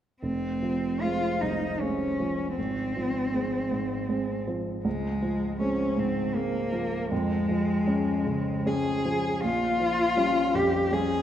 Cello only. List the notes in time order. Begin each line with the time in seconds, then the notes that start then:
0.22 C4
1.01 F4
1.41 D#4
1.80 C#4
2.56 C4
4.85 G#3
5.60 C#4
5.99 C4
6.35 A#3
7.12 G#3
8.66 G#4
9.43 F4
10.55 G4
10.93 G#4